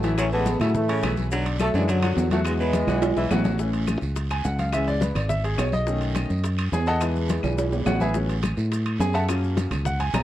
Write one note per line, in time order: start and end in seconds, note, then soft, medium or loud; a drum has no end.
0.00 0.55 A1 loud
0.00 0.27 E3 medium
0.00 0.15 F#3 medium
0.00 0.13 A3 medium
0.00 high timbale medium
0.00 short guiro medium
0.00 maracas soft
0.04 0.27 E4 medium
0.04 0.27 E5 medium
0.04 high bongo soft
0.17 0.25 F#3 medium
0.17 0.32 A3 medium
0.17 0.32 C#4 loud
0.17 high bongo medium
0.17 high conga soft
0.17 high timbale medium
0.17 long guiro medium
0.17 claves medium
0.17 maracas medium
0.32 0.48 E3 medium
0.32 0.59 G#3 medium
0.32 0.56 A3 medium
0.32 0.58 B3 medium
0.32 0.56 A4 medium
0.32 0.56 A5 medium
0.32 high conga soft
0.32 maracas soft
0.46 high bongo medium
0.46 high conga loud
0.46 high timbale medium
0.46 short guiro medium
0.46 maracas medium
0.60 1.00 A2 loud
0.60 0.75 C#3 medium
0.60 0.75 F#3 medium
0.60 0.74 A3 medium
0.60 0.84 E4 medium
0.60 0.84 E5 medium
0.60 0.84 E6 medium
0.60 high bongo soft
0.60 high conga soft
0.60 low conga medium
0.60 high timbale medium
0.60 short guiro medium
0.60 claves medium
0.60 maracas soft
0.75 1.15 E3 medium
0.75 1.15 A3 medium
0.75 high bongo medium
0.75 high conga soft
0.75 low conga medium
0.75 long guiro medium
0.75 maracas medium
0.89 1.11 C#3 medium
0.89 1.00 C#4 medium
0.89 1.01 C#5 medium
0.89 1.01 C#6 medium
0.89 high bongo soft
0.89 high conga soft
0.89 high timbale medium
0.89 maracas soft
1.02 1.69 B1 loud
1.02 1.26 E3 medium
1.02 1.26 E4 medium
1.02 1.26 E5 medium
1.02 high bongo soft
1.02 low bongo medium
1.02 high conga medium
1.02 high timbale loud
1.02 short guiro medium
1.02 claves medium
1.02 maracas medium
1.17 high bongo soft
1.17 high conga medium
1.17 short guiro medium
1.17 maracas soft
1.31 1.55 D3 medium
1.31 1.47 F#3 loud
1.31 1.56 D4 medium
1.31 1.56 D5 medium
1.31 high bongo medium
1.31 high conga soft
1.31 long guiro medium
1.31 maracas medium
1.46 high conga soft
1.46 high timbale medium
1.46 maracas soft
1.59 1.74 F#3 medium
1.59 1.72 A3 medium
1.59 1.68 A3 medium
1.59 1.74 A3 loud
1.59 1.72 A4 medium
1.59 1.72 A5 medium
1.59 high bongo medium
1.59 high conga medium
1.59 high timbale medium
1.59 short guiro medium
1.59 claves medium
1.59 maracas medium
1.74 2.14 F#2 loud
1.74 1.98 D3 medium
1.74 1.89 E3 medium
1.74 1.82 F#3 medium
1.74 1.89 G#3 loud
1.74 1.98 D4 medium
1.74 1.98 D5 medium
1.74 high bongo soft
1.74 high conga soft
1.74 short guiro medium
1.74 maracas soft
1.87 2.29 D3 medium
1.87 2.20 F#3 medium
1.87 2.28 F#3 medium
1.87 high bongo medium
1.87 high conga soft
1.87 high timbale medium
1.87 long guiro medium
1.87 maracas medium
2.02 2.26 F#3 medium
2.02 2.27 F#4 medium
2.02 2.27 F#5 medium
2.02 high conga soft
2.02 high timbale loud
2.02 claves medium
2.02 maracas soft
2.16 2.82 E2 loud
2.16 high bongo soft
2.16 low bongo medium
2.16 high conga soft
2.16 low timbale medium
2.16 short guiro medium
2.16 maracas medium
2.31 2.55 F#3 medium
2.31 2.39 F#3 medium
2.31 2.39 A3 loud
2.31 2.55 F#4 medium
2.31 2.56 F#5 medium
2.31 high bongo soft
2.31 high conga medium
2.31 high timbale medium
2.31 short guiro medium
2.31 maracas soft
2.45 3.42 E3 medium
2.45 2.53 G#3 medium
2.45 3.42 G#3 loud
2.45 high bongo medium
2.45 high timbale medium
2.45 long guiro medium
2.45 claves medium
2.45 maracas medium
2.59 2.74 F#3 medium
2.59 2.83 B3 medium
2.59 2.83 B4 medium
2.59 2.84 B5 medium
2.59 high conga soft
2.59 maracas soft
2.73 high bongo medium
2.73 high conga loud
2.73 high timbale medium
2.73 short guiro medium
2.73 maracas medium
2.87 3.14 B1 medium
2.87 3.02 E3 medium
2.87 3.11 F#4 medium
2.87 3.11 F#5 medium
2.87 3.12 F#6 medium
2.87 high bongo soft
2.87 high conga soft
2.87 low conga medium
2.87 high timbale medium
2.87 short guiro medium
2.87 claves medium
2.87 maracas soft
3.02 high bongo medium
3.02 high conga soft
3.02 high timbale medium
3.02 long guiro medium
3.02 maracas medium
3.16 3.30 B1 medium
3.16 3.39 E3 medium
3.16 3.28 E4 medium
3.16 3.28 E5 medium
3.16 3.29 E6 medium
3.16 high bongo medium
3.16 high conga soft
3.16 maracas soft
3.30 3.96 A1 loud
3.30 3.55 F#3 medium
3.30 3.55 F#4 medium
3.30 3.55 F#5 medium
3.30 low bongo medium
3.30 high conga medium
3.30 low timbale medium
3.30 short guiro medium
3.30 claves medium
3.30 maracas medium
3.44 low bongo medium
3.44 high conga medium
3.44 low timbale medium
3.44 short guiro medium
3.44 maracas soft
3.58 4.00 E3 medium
3.58 4.00 A3 medium
3.58 4.01 C#4 medium
3.58 high bongo medium
3.58 high conga soft
3.58 long guiro medium
3.58 maracas medium
3.73 high conga soft
3.73 high timbale medium
3.73 maracas soft
3.86 high bongo medium
3.86 high conga medium
3.86 high timbale medium
3.86 short guiro medium
3.86 claves medium
3.86 maracas medium
4.01 4.42 C#2 medium
4.01 high bongo soft
4.01 high conga soft
4.01 short guiro medium
4.01 maracas soft
4.16 high bongo medium
4.16 high conga soft
4.16 high timbale medium
4.16 long guiro medium
4.16 maracas medium
4.30 4.45 G#5 medium
4.30 high bongo soft
4.30 high conga soft
4.30 high timbale loud
4.30 claves medium
4.30 maracas soft
4.44 5.11 C#2 loud
4.44 4.59 F#5 medium
4.44 high bongo soft
4.44 low bongo medium
4.44 high conga soft
4.44 short guiro medium
4.44 maracas medium
4.58 4.73 F5 medium
4.58 high bongo soft
4.58 high conga medium
4.58 high timbale medium
4.58 short guiro medium
4.58 maracas soft
4.72 4.92 E3 medium
4.72 4.92 G#3 medium
4.72 4.93 C#4 medium
4.72 4.87 E5 medium
4.72 high bongo medium
4.72 high conga soft
4.72 high timbale medium
4.72 long guiro medium
4.72 claves medium
4.72 maracas medium
4.87 5.01 D5 loud
4.87 high conga soft
4.87 maracas soft
5.01 5.16 B4 medium
5.01 high bongo medium
5.01 high conga medium
5.01 high timbale medium
5.01 short guiro medium
5.01 maracas medium
5.15 5.55 G#1 loud
5.15 5.29 D5 medium
5.15 high bongo soft
5.15 high conga soft
5.15 low conga medium
5.15 high timbale medium
5.15 short guiro medium
5.15 claves medium
5.15 maracas soft
5.29 5.43 E5 medium
5.29 high bongo medium
5.29 high conga soft
5.29 low conga medium
5.29 long guiro medium
5.29 maracas medium
5.44 5.58 G#4 medium
5.44 high bongo soft
5.44 high conga soft
5.44 high timbale medium
5.44 maracas soft
5.58 6.24 B1 loud
5.58 5.72 C#5 medium
5.58 high bongo soft
5.58 low bongo medium
5.58 high conga medium
5.58 high timbale medium
5.58 low timbale medium
5.58 short guiro medium
5.58 claves medium
5.58 maracas medium
5.72 6.40 D#5 medium
5.72 high bongo soft
5.72 high conga medium
5.72 short guiro medium
5.72 maracas soft
5.87 6.28 D#3 medium
5.87 6.28 A3 medium
5.87 6.28 C#4 medium
5.87 high bongo medium
5.87 long guiro medium
5.87 maracas medium
6.01 high conga soft
6.01 high timbale medium
6.01 maracas soft
6.15 high bongo medium
6.15 high conga medium
6.15 high timbale medium
6.15 short guiro medium
6.15 claves medium
6.15 maracas medium
6.30 6.70 F#2 loud
6.30 high bongo soft
6.30 high conga soft
6.30 short guiro medium
6.30 maracas soft
6.44 high bongo medium
6.44 high conga soft
6.44 high timbale medium
6.44 long guiro medium
6.44 maracas medium
6.58 high bongo soft
6.58 high conga soft
6.58 high timbale loud
6.58 claves medium
6.58 maracas soft
6.72 7.38 E2 loud
6.72 6.87 G#4 medium
6.72 6.87 G#5 medium
6.72 high bongo soft
6.72 low bongo medium
6.72 high conga soft
6.72 low timbale medium
6.72 short guiro medium
6.72 maracas medium
6.87 7.01 A4 medium
6.87 7.01 D#5 medium
6.87 7.01 F#5 medium
6.87 7.01 A5 loud
6.87 high bongo soft
6.87 high timbale medium
6.87 short guiro medium
6.87 maracas soft
7.01 8.11 E3 medium
7.01 8.11 G#3 medium
7.01 8.11 B3 medium
7.01 high bongo medium
7.01 high conga soft
7.01 high timbale medium
7.01 long guiro medium
7.01 claves medium
7.01 maracas medium
7.16 high conga soft
7.16 maracas soft
7.29 high bongo medium
7.29 high conga medium
7.29 high timbale medium
7.29 short guiro medium
7.29 maracas medium
7.43 7.83 B1 loud
7.43 high conga soft
7.43 low conga medium
7.43 high timbale medium
7.43 short guiro medium
7.43 claves medium
7.43 maracas soft
7.58 high bongo medium
7.58 high conga soft
7.58 high timbale medium
7.58 long guiro medium
7.58 maracas medium
7.72 high bongo soft
7.72 high conga soft
7.72 low timbale medium
7.72 maracas soft
7.86 8.52 A1 loud
7.86 8.01 F#4 medium
7.86 8.00 F#5 medium
7.86 high bongo soft
7.86 low bongo medium
7.86 high conga medium
7.86 low timbale loud
7.86 short guiro medium
7.86 claves medium
7.86 maracas medium
8.00 8.15 G#4 medium
8.00 8.15 B4 medium
8.00 8.15 E5 medium
8.00 8.15 G#5 medium
8.00 high bongo soft
8.00 high conga medium
8.00 low timbale medium
8.00 short guiro medium
8.00 maracas soft
8.14 8.34 F#3 medium
8.14 8.34 B3 medium
8.14 8.34 C#4 medium
8.14 high bongo medium
8.14 long guiro medium
8.14 maracas medium
8.29 high conga soft
8.29 high timbale medium
8.29 maracas soft
8.42 high bongo medium
8.42 high conga medium
8.42 high timbale medium
8.42 short guiro medium
8.42 claves medium
8.42 maracas medium
8.57 8.97 A2 medium
8.57 high bongo soft
8.57 high conga soft
8.57 short guiro medium
8.57 maracas soft
8.72 high bongo medium
8.72 high conga soft
8.72 high timbale medium
8.72 long guiro medium
8.72 maracas medium
8.86 high bongo soft
8.86 high conga soft
8.86 high timbale loud
8.86 claves medium
8.86 maracas soft
9.00 9.66 F#2 loud
9.00 9.14 G#4 medium
9.00 9.14 G#5 loud
9.00 high bongo soft
9.00 low bongo medium
9.00 high conga soft
9.00 low timbale medium
9.00 short guiro medium
9.00 maracas medium
9.13 9.23 A4 medium
9.13 9.23 E5 medium
9.13 9.23 F#5 medium
9.13 9.23 A5 loud
9.13 high bongo soft
9.13 high timbale medium
9.13 short guiro medium
9.13 maracas soft
9.28 9.70 F#3 medium
9.28 9.70 A#3 medium
9.28 9.70 C#4 medium
9.28 high bongo medium
9.28 high conga soft
9.28 high timbale medium
9.28 long guiro medium
9.28 claves medium
9.28 maracas medium
9.44 high conga soft
9.44 maracas soft
9.57 high bongo medium
9.57 high conga loud
9.57 high timbale medium
9.57 short guiro medium
9.57 maracas medium
9.71 10.11 C#2 loud
9.71 high bongo soft
9.71 high conga soft
9.71 low conga medium
9.71 high timbale medium
9.71 short guiro medium
9.71 claves medium
9.71 maracas soft
9.85 10.00 F#5 medium
9.85 high bongo medium
9.85 high conga soft
9.85 low conga medium
9.85 long guiro medium
9.85 maracas medium
10.00 10.14 G#5 medium
10.00 high bongo soft
10.00 high conga soft
10.00 high timbale medium
10.00 maracas soft
10.14 10.23 B1 loud
10.14 10.23 A#5 medium
10.14 high bongo soft
10.14 low bongo medium
10.14 high conga medium
10.14 high timbale loud
10.14 low timbale medium
10.14 short guiro medium
10.14 claves medium
10.14 maracas medium